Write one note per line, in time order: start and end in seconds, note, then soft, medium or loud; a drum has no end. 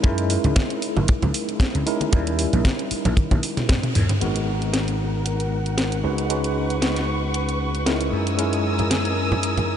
0.03 0.36 F#2 loud
0.03 1.83 G#3 medium
0.03 1.83 C#4 medium
0.03 1.84 D#4 medium
0.03 1.84 E4 medium
0.03 1.84 A#4 loud
0.03 kick loud
0.03 closed hi-hat medium
0.18 closed hi-hat medium
0.30 open hi-hat medium
0.44 0.52 C#2 loud
0.44 closed hi-hat soft
0.44 muted conga medium
0.44 low conga medium
0.56 kick loud
0.56 snare loud
0.56 closed hi-hat medium
0.56 high conga medium
0.70 closed hi-hat soft
0.82 open hi-hat loud
0.96 1.04 F#1 medium
0.96 muted conga medium
0.96 low conga medium
1.08 kick loud
1.08 closed hi-hat medium
1.22 1.30 C#2 medium
1.22 closed hi-hat soft
1.22 high conga medium
1.22 low conga loud
1.34 open hi-hat medium
1.49 closed hi-hat soft
1.60 kick loud
1.60 snare loud
1.60 closed hi-hat medium
1.75 1.82 C#2 medium
1.75 closed hi-hat soft
1.86 2.10 G#3 medium
1.86 2.10 C#4 medium
1.86 2.10 D#4 medium
1.86 2.10 E4 medium
1.86 2.10 A#4 medium
1.86 open hi-hat loud
2.01 closed hi-hat medium
2.01 high conga medium
2.12 2.45 D#2 medium
2.12 3.66 G3 medium
2.12 3.66 C#4 medium
2.12 3.66 D#4 medium
2.12 3.67 E4 medium
2.12 3.67 A#4 medium
2.12 kick loud
2.12 closed hi-hat medium
2.27 closed hi-hat medium
2.39 open hi-hat medium
2.53 2.61 A#1 loud
2.53 closed hi-hat soft
2.53 muted conga soft
2.53 low conga medium
2.65 kick loud
2.65 snare loud
2.65 closed hi-hat medium
2.65 high conga medium
2.79 closed hi-hat soft
2.91 muted slap bass stroke soft
2.91 open hi-hat loud
3.05 3.13 A#1 medium
3.05 closed hi-hat soft
3.05 muted conga medium
3.05 low conga medium
3.17 kick loud
3.17 closed hi-hat medium
3.17 high tom medium
3.31 3.39 A#1 medium
3.31 kick medium
3.31 closed hi-hat soft
3.31 high tom medium
3.31 high conga medium
3.31 low conga medium
3.43 open hi-hat loud
3.57 muted slap bass stroke soft
3.57 snare soft
3.57 closed hi-hat soft
3.57 mid tom medium
3.57 muted conga medium
3.69 3.78 G2 medium
3.69 kick loud
3.69 snare loud
3.69 closed hi-hat medium
3.69 mid tom medium
3.83 closed hi-hat soft
3.83 mid tom medium
3.83 muted conga medium
3.95 4.04 D#2 medium
3.95 mid tom loud
3.95 open hi-hat loud
4.09 closed hi-hat medium
4.09 mid tom medium
4.09 high conga medium
4.21 6.02 G#1 medium
4.21 6.01 G#3 medium
4.21 6.01 B3 medium
4.21 6.01 D#4 medium
4.21 6.02 F#4 medium
4.21 6.02 A#4 medium
4.21 8.09 F#5 medium
4.21 closed hi-hat medium
4.36 closed hi-hat soft
4.62 closed hi-hat soft
4.73 snare loud
4.73 closed hi-hat medium
4.88 closed hi-hat soft
5.26 closed hi-hat medium
5.40 closed hi-hat soft
5.66 closed hi-hat soft
5.78 snare loud
5.78 closed hi-hat medium
5.92 closed hi-hat soft
6.03 8.10 C#2 medium
6.03 6.27 G#3 medium
6.03 6.27 C#4 medium
6.03 6.27 D#4 medium
6.03 6.27 F#4 medium
6.03 8.11 B4 medium
6.03 6.28 B4 medium
6.03 8.11 C#6 medium
6.18 closed hi-hat soft
6.29 7.83 G#3 medium
6.29 7.84 C#4 medium
6.29 7.84 D#4 medium
6.29 7.84 F#4 medium
6.29 7.84 B4 medium
6.29 closed hi-hat medium
6.44 closed hi-hat soft
6.70 closed hi-hat soft
6.82 snare loud
6.82 closed hi-hat medium
6.96 snare soft
6.96 closed hi-hat soft
7.34 closed hi-hat medium
7.49 closed hi-hat soft
7.75 closed hi-hat soft
7.86 8.36 G#3 medium
7.86 8.36 C#4 medium
7.86 8.36 D#4 medium
7.86 8.36 E4 medium
7.86 8.36 A#4 medium
7.86 snare loud
7.86 closed hi-hat medium
8.01 closed hi-hat soft
8.13 9.77 F#2 medium
8.13 9.77 A#4 medium
8.13 9.77 G#5 medium
8.13 9.77 D#6 medium
8.13 9.77 E6 medium
8.27 closed hi-hat soft
8.38 9.77 G#3 medium
8.38 9.77 C#4 medium
8.38 9.77 D#4 medium
8.38 9.77 E4 medium
8.38 9.77 A#4 medium
8.38 closed hi-hat medium
8.53 closed hi-hat soft
8.78 closed hi-hat soft
8.78 muted conga soft
8.78 low conga medium
8.91 snare loud
8.91 closed hi-hat medium
8.91 high conga medium
9.05 closed hi-hat soft
9.32 muted conga soft
9.32 low conga medium
9.43 closed hi-hat medium
9.57 closed hi-hat soft
9.57 high conga medium
9.57 low conga medium